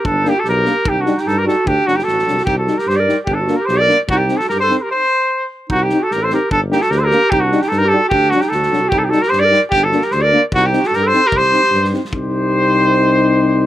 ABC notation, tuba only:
X:1
M:2/4
L:1/8
Q:1/4=149
K:none
V:1 name="Tuba" clef=bass
G,,,2 B,,,2 | C,,2 G,,2 | D,, ^F,,, A,,, C,, | C,,2 G,,2 |
G,,,2 B,,,2 | C,,2 G,,2 | z4 | C,,2 A,,,2 |
G,,,2 D,,2 | C,,2 G,,2 | D,,2 D,, C,, | C,,2 G,,2 |
G,,,2 D,,2 | C,,2 G,,2 | C,,2 G,,2 | C,,4- |
C,,4 |]